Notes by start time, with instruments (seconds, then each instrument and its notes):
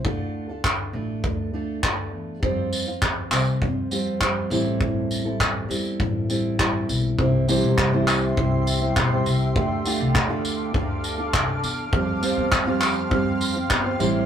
0.04 upright bass D2, steel-string acoustic guitar D3 A3 D4 F4 A4, kick
0.49 steel-string acoustic guitar D4 F4 A4
0.64 kick, clap
0.93 upright bass A1, steel-string acoustic guitar A3 D4 F4 A4
1.24 upright bass D2, kick
1.53 steel-string acoustic guitar A3 D4 F4 A4
1.83 steel-string acoustic guitar A3 D4 F4 A4, kick, clap
2.13 upright bass E2
2.42 upright bass F2, steel-string acoustic guitar F3 G3 C4 F4 C5, kick
2.73 tambourine
2.87 steel-string acoustic guitar C4 F4 C5
3.02 kick, clap
3.31 upright bass C2, steel-string acoustic guitar G3 C4 F4 C5, clap, tambourine
3.62 upright bass F2, kick
3.91 steel-string acoustic guitar G3 C4 F4 C5, tambourine
4.20 steel-string acoustic guitar G3 C4 F4 C5, kick, clap
4.50 upright bass A1, steel-string acoustic guitar A2 E3 G3 C4 E4 A4, tambourine
4.81 kick
5.11 tambourine
5.25 steel-string acoustic guitar G3 C4 E4 A4
5.40 kick, clap
5.69 upright bass E2, steel-string acoustic guitar G3 C4 E4 A4, tambourine
6.00 upright bass A1, kick
6.29 steel-string acoustic guitar G3 C4 E4 A4, tambourine
6.59 steel-string acoustic guitar G3 C4 E4 A4, kick, clap
6.89 upright bass B1, tambourine
7.18 upright bass C2, steel-string acoustic guitar G3 C4 E4 C5, ambient pad G4 E5 C6, kick
7.48 steel-string acoustic guitar C3 E3 G3 C4 E4 C5, tambourine
7.63 upright bass B1
7.78 upright bass C2, kick, clap
7.93 steel-string acoustic guitar C3 E3 G3 C4 E4 C5
8.08 clap, tambourine
8.37 upright bass C2, steel-string acoustic guitar G3 C4 E4 C5, kick
8.67 tambourine
8.81 steel-string acoustic guitar G3 C4 E4 C5
8.96 upright bass B1, kick, clap
9.10 steel-string acoustic guitar G3 C4 E4 C5
9.26 upright bass C2, tambourine
9.56 upright bass D2, steel-string acoustic guitar A3 D4 F4 A4, ambient pad A4 F5 D6, kick
9.85 steel-string acoustic guitar D3 A3 D4 F4 A4, tambourine
10.00 upright bass C2
10.15 upright bass D2, kick, clap
10.29 steel-string acoustic guitar D3 A3 D4 F4 A4
10.45 tambourine
10.74 upright bass D2, steel-string acoustic guitar A3 D4 F4 A4, kick
11.04 tambourine
11.18 steel-string acoustic guitar D4 F4 A4
11.34 upright bass C2, kick, clap
11.48 steel-string acoustic guitar D4 F4 A4
11.63 upright bass E2, tambourine
11.93 upright bass F2, steel-string acoustic guitar G3 C4 F4 C5, ambient pad G4 C6, kick
12.22 steel-string acoustic guitar F3 G3 C4 F4 C5, tambourine
12.37 upright bass E2
12.52 upright bass F2, kick, clap
12.66 steel-string acoustic guitar F3 G3 C4 F4 C5
12.81 clap, tambourine
13.10 upright bass F2, steel-string acoustic guitar G3 C4 F4 C5, kick
13.41 tambourine
13.55 steel-string acoustic guitar C4 F4 C5
13.70 upright bass E2, kick, clap
13.84 steel-string acoustic guitar C4 F4 C5
13.99 upright bass A1, steel-string acoustic guitar A2 E3 G3 C4 E4 C5, ambient pad A4 G5, tambourine